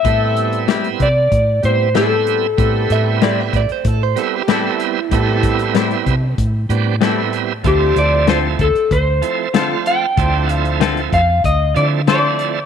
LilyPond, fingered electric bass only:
\new Staff \with { instrumentName = "Fingered electric bass" } { \clef bass \time 4/4 \key a \minor \tempo 4 = 95 a,4. c8 a,8 a,4. | a,8 a,4 a,16 r16 a,8 r4. | a,4. c8 a,8 a,4. | d,8 d,4 d,16 r16 d,8 r4. |
d,4. f,8 d,8 d4. | }